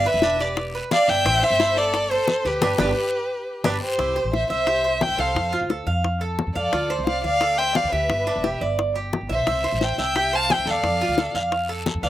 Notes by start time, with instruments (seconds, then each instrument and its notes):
0.06 cuban tres B4, violin section B4, violin E5, high bongo
0.14 upright bass E1
0.22 cuban tres D4, high bongo, short guiro
0.39 cuban tres G4, violin section B4, violin D5, high bongo, short guiro
0.57 high bongo, long guiro
0.75 cuban tres B4
0.91 cuban tres D5, violin section D5, violin F5, high bongo, low bongo, short guiro
1.08 upright bass G1, violin section E5, violin G5, high bongo, short guiro
1.25 upright bass A1, cuban tres C4, high bongo, long guiro
1.43 violin section C5, violin E5, high bongo
1.50 upright bass G1
1.60 cuban tres E4, high bongo, short guiro
1.77 violin section A4, violin D5, high bongo, short guiro
1.94 cuban tres A4, high bongo, long guiro
2.11 violin section A4, cuban tres C5, violin C5
2.28 high bongo, low bongo, short guiro
2.45 upright bass D2, violin section G4, cuban tres G4, violin B4, high bongo, short guiro
2.61 upright bass G1, cuban tres D4 G4 B4, low bongo, long guiro
2.78 upright bass G1, cuban tres D4 G4 B4, low bongo, long guiro
3.64 upright bass G1, cuban tres D4 G4 B4, low bongo, long guiro
3.82 violin section G4, violin C5
3.98 upright bass C2, cuban tres E4, high bongo
4.16 cuban tres C5, high bongo
4.24 upright bass A1
4.33 violin section C5, violin E5, high bongo
4.49 upright bass C2, violin section C5, cuban tres E5, violin E5, high bongo
4.67 cuban tres G4, high bongo
4.84 cuban tres C5
5.01 violin section E5, violin G5, high bongo, low bongo
5.09 upright bass C2
5.18 upright bass C2, cuban tres A4, violin section C5, violin F5, high bongo
5.35 upright bass F2, high bongo
5.53 cuban tres F4, high bongo
5.61 upright bass D2
5.70 cuban tres A4, high bongo
5.87 upright bass F2, cuban tres F5, high bongo
6.04 high bongo
6.21 cuban tres A4
6.39 high bongo, low bongo
6.47 upright bass F2
6.55 upright bass F2, violin section A4, violin D5, cuban tres F5, high bongo
6.73 upright bass D2, cuban tres F4, high bongo
6.90 cuban tres C5, high bongo
6.99 upright bass C2
7.06 violin section D5, violin F5, high bongo
7.23 upright bass D2, violin section D5, cuban tres F5, violin F5, high bongo
7.41 cuban tres A4, high bongo
7.58 cuban tres C5, violin section E5, violin G5
7.75 violin section D5, violin F5, high bongo, low bongo
7.84 upright bass D2
7.91 upright bass D2, cuban tres G4, violin section B4, violin E5, high bongo
8.09 upright bass G1, high bongo
8.27 cuban tres D4, high bongo
8.36 upright bass E1
8.44 cuban tres G4, high bongo
8.61 upright bass G1, cuban tres D5, high bongo
8.79 high bongo
8.96 cuban tres G4
9.13 high bongo, low bongo
9.21 upright bass G1
9.29 upright bass B1, violin section C5, cuban tres E5, violin E5, high bongo
9.47 upright bass C2, cuban tres E4, high bongo, long guiro
9.64 cuban tres C5, high bongo
9.72 upright bass A1
9.81 violin section E5, violin G5, high bongo, short guiro
9.98 upright bass C2, cuban tres E5, violin section E5, violin G5, high bongo, short guiro
10.15 cuban tres G4, high bongo, long guiro
10.33 cuban tres C5, violin section F5, violin A5
10.50 violin section E5, violin G5, high bongo, low bongo, short guiro
10.58 upright bass C2
10.66 upright bass E2, cuban tres A4, high bongo, short guiro
10.70 violin section D5, violin F5
10.83 upright bass F2, high bongo, long guiro
11.01 cuban tres F4, high bongo
11.09 upright bass D2
11.18 cuban tres A4, high bongo, short guiro
11.34 upright bass F2, cuban tres F5, high bongo, short guiro
11.52 high bongo, long guiro
11.69 cuban tres A4
11.86 high bongo, low bongo, short guiro
11.95 upright bass F2
12.03 upright bass D2, violin section B4, violin D5, cuban tres F5, high bongo, short guiro